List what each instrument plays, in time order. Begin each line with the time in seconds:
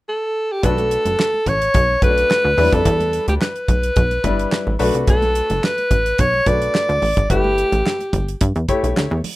0.09 alto saxophone A4
0.52 alto saxophone G4
0.63 analog synth bass B1, grand piano A3 D4 F#4 B4, alto saxophone A4, kick, closed hi-hat, muted conga
0.78 closed hi-hat, muted conga, high conga
0.91 closed hi-hat
1.06 analog synth bass F#1, closed hi-hat, high conga
1.19 snare, clap
1.34 muted conga
1.46 analog synth bass A1, alto saxophone C#5, kick, closed hi-hat, high conga, low conga
1.62 closed hi-hat
1.74 analog synth bass B1, kick, closed hi-hat, low conga
1.89 muted conga
2.02 analog synth bass B1, grand piano A3 C#4 F#4 B4, alto saxophone B4, kick, closed hi-hat
2.09 grand piano D4
2.18 closed hi-hat
2.30 snare, clap, muted conga
2.45 analog synth bass D2
2.57 analog synth bass E2, grand piano F#3 D4 E4 B4, open hi-hat, high conga, low conga
2.64 grand piano G3
2.73 analog synth bass F2, alto saxophone A4, kick, closed hi-hat
2.85 analog synth bass E2, kick, closed hi-hat, muted conga
3.00 closed hi-hat, high conga
3.13 closed hi-hat
3.28 analog synth bass D2, alto saxophone G4, closed hi-hat, high conga
3.41 alto saxophone B4, snare, clap
3.56 closed hi-hat
3.68 analog synth bass B1, kick, closed hi-hat, high conga, low conga
3.83 closed hi-hat
3.96 analog synth bass B1, kick, closed hi-hat, muted conga, low conga
4.11 closed hi-hat, muted conga
4.24 analog synth bass G1, grand piano G3 D4 E4 B4, kick, closed hi-hat
4.39 closed hi-hat
4.52 snare, clap, muted conga
4.67 analog synth bass A1, muted conga
4.79 analog synth bass B1, grand piano A3 D4 F#4 B4, open hi-hat, high conga, low conga
4.95 analog synth bass C2, closed hi-hat
5.07 analog synth bass B1, alto saxophone A4, kick, closed hi-hat, muted conga
5.22 closed hi-hat, muted conga, high conga
5.35 closed hi-hat
5.50 analog synth bass F#1, closed hi-hat, high conga
5.63 alto saxophone B4, snare, clap
5.78 closed hi-hat, muted conga
5.91 analog synth bass A1, kick, closed hi-hat, high conga, low conga
6.06 closed hi-hat
6.18 analog synth bass B1, alto saxophone C#5, kick, closed hi-hat, muted conga, low conga
6.34 muted conga
6.46 analog synth bass B1, grand piano A3 D4 F#4 B4, alto saxophone D5, kick, closed hi-hat
6.62 closed hi-hat
6.74 snare, clap
6.89 analog synth bass D2, closed hi-hat, muted conga
7.02 analog synth bass A1, open hi-hat, high conga, low conga
7.17 analog synth bass G#1, kick, closed hi-hat
7.29 analog synth bass G1, grand piano A3 E4 G4 B4, alto saxophone G4, kick, closed hi-hat
7.44 muted conga, high conga
7.58 closed hi-hat
7.72 analog synth bass A1, closed hi-hat, high conga
7.86 snare, clap
8.01 closed hi-hat, muted conga
8.13 analog synth bass G1, kick, closed hi-hat, high conga, low conga
8.28 closed hi-hat
8.41 analog synth bass G2, kick, closed hi-hat, muted conga, low conga
8.56 analog synth bass E2, closed hi-hat
8.68 grand piano A3 E4 G4 C#5, kick, closed hi-hat
8.83 analog synth bass B1, closed hi-hat
8.97 analog synth bass D2, snare, clap, muted conga
9.11 analog synth bass E2, muted conga
9.24 open hi-hat, high conga, low conga